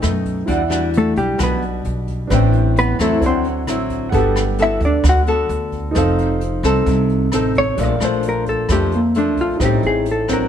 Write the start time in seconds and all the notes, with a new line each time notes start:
Already playing: B2 D#4 A4 B4 G5
0.02 F#2 A3 D#4, cross-stick, closed hi-hat
0.25 kick, closed hi-hat
0.46 E2 E3 G3 D4 E4 F#4, kick, closed hi-hat
0.50 D5 F#5
0.70 G3 D4 F#4, cross-stick, closed hi-hat
0.94 A3, closed hi-hat
0.98 A4
1.16 B1 G3 G4, kick, closed hi-hat
1.38 B1 B2 G3 D4 F#4, kick, cross-stick, closed hi-hat
1.43 B3 B4
1.62 closed hi-hat
1.85 B1, closed hi-hat
2.08 kick, closed hi-hat
2.27 A1 A2 G3 D4 B4 C5, kick, cross-stick, closed hi-hat
2.31 C4 D4 G5
2.53 closed hi-hat
2.77 B3 B4, closed hi-hat
2.99 E2 F#3 A3 C4 E4 A4, kick, cross-stick, closed hi-hat
3.18 D2 E4 C5 D5, kick, closed hi-hat
3.22 D3 C5 F#5
3.27 C4
3.44 closed hi-hat
3.67 A1 F#3 C4 E4, cross-stick, closed hi-hat
3.90 kick, closed hi-hat
4.09 G1 G3 B3 F#4 A4 F#5, kick, closed hi-hat
4.13 G4 A4 B4
4.36 cross-stick, closed hi-hat
4.58 B3 F#4 A4, closed hi-hat
4.62 E4 E5
4.81 D2, kick, closed hi-hat
4.85 D4 D5
5.04 D2 D3, kick, cross-stick, closed hi-hat
5.09 F#4 F#5
5.27 B3 F#4 A4, closed hi-hat
5.49 D2, closed hi-hat
5.72 kick, closed hi-hat
5.91 F1 D#4 A4, kick, cross-stick, closed hi-hat
5.95 F3 C4 D#4 A4 C5 F5
6.18 closed hi-hat
6.41 closed hi-hat
6.63 C2 C4 D#4 A4, kick, cross-stick, closed hi-hat
6.86 C2 C3, kick, closed hi-hat
7.09 closed hi-hat
7.32 A1 C4 D#4 A4, cross-stick, closed hi-hat
7.55 C#5, kick, closed hi-hat
7.75 A#1 A#2 D4 A4, kick, closed hi-hat
7.79 F3 A3 A#3 D4 F5
7.83 D5
8.00 A#1 F3 A3 D4, cross-stick, closed hi-hat
8.05 C5
8.23 closed hi-hat
8.29 A#4
8.46 A4, kick, closed hi-hat
8.69 F2 F3 A3 D4 G4, kick, cross-stick, closed hi-hat
8.92 A#3, closed hi-hat
9.15 F3 A3 D4, closed hi-hat
9.37 A#1 F4, kick, closed hi-hat
9.57 A1 A2 G3 C4 D#4 A4, kick, cross-stick, closed hi-hat
9.61 D#4 C5 G5
9.65 G4
9.83 A1 G#4, closed hi-hat
10.05 closed hi-hat
10.12 A4
10.28 F#3 C4 D4, kick, cross-stick, closed hi-hat
10.33 A#4